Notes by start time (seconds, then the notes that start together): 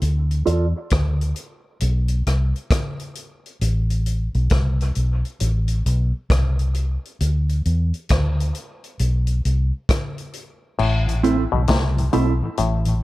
0.01 D2, closed hi-hat
0.31 closed hi-hat
0.46 E2 F4 A4 D5, closed hi-hat
0.90 D2, kick, cross-stick, closed hi-hat
1.21 closed hi-hat
1.36 closed hi-hat
1.80 B1, closed hi-hat
2.08 closed hi-hat
2.27 C2, cross-stick, closed hi-hat
2.56 closed hi-hat
2.70 kick, cross-stick, closed hi-hat
2.99 closed hi-hat
3.15 closed hi-hat
3.46 closed hi-hat
3.61 A1, closed hi-hat
3.90 closed hi-hat
4.06 closed hi-hat
4.34 B1, closed hi-hat
4.50 C2, kick, cross-stick, closed hi-hat
4.80 closed hi-hat
4.95 B1, closed hi-hat
5.25 closed hi-hat
5.40 A1, closed hi-hat
5.68 closed hi-hat
5.86 B1, closed hi-hat
6.30 C2, kick, cross-stick, closed hi-hat
6.59 closed hi-hat
6.74 closed hi-hat
7.05 closed hi-hat
7.20 D2, closed hi-hat
7.49 closed hi-hat
7.65 E2, closed hi-hat
7.94 closed hi-hat
8.09 D2, kick, cross-stick, closed hi-hat
8.40 closed hi-hat
8.55 closed hi-hat
8.84 closed hi-hat
8.99 B1, closed hi-hat
9.27 closed hi-hat
9.45 C2, closed hi-hat
9.89 kick, cross-stick, closed hi-hat
10.18 closed hi-hat
10.33 closed hi-hat
10.79 A1 A2, crash
11.07 A2 E3, closed hi-hat
11.23 A3 C4 E4 A4, closed hi-hat
11.52 B1 A2 B2 E3
11.68 C2 C3, kick, snare, closed hi-hat
11.97 A2 E3, closed hi-hat
12.13 B1 B2 A3 C4 E4 A4, closed hi-hat
12.42 A2 E3
12.57 A1 A2, closed hi-hat
12.85 A2 E3, closed hi-hat